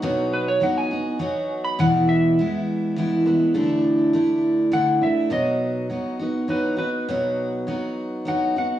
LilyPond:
<<
  \new Staff \with { instrumentName = "Electric slide guitar" } { \time 3/4 \key b \mixolydian \tempo 4 = 102 r8 b'16 cis''16 fis''16 gis''4. b''16 | fis''8 e''2~ e''8~ | e''8 r4. fis''8 e''8 | dis''2 b'8 b'8~ |
b'4. r8 fis''8 fis''8 | }
  \new Staff \with { instrumentName = "Steel-string acoustic guitar" } { \time 3/4 \key b \mixolydian <b, fis b dis' fis'>4 <fis b dis' fis'>8 <b dis' fis'>8 <fis b dis' fis'>4 | <e, b, e gis b e'>4 <e gis b e'>4 <e gis b e'>8 <e gis b e'>8 | <d a d' e'>4 <d a d' e'>4 <d a d' e'>8 <a d' e'>8 | <b, fis b dis' fis'>4 <fis b dis' fis'>8 <b dis' fis'>8 <fis b dis' fis'>8 <b dis' fis'>8 |
<b, fis b dis' fis'>4 <fis b dis' fis'>4 <fis b dis' fis'>8 <b dis' fis'>8 | }
>>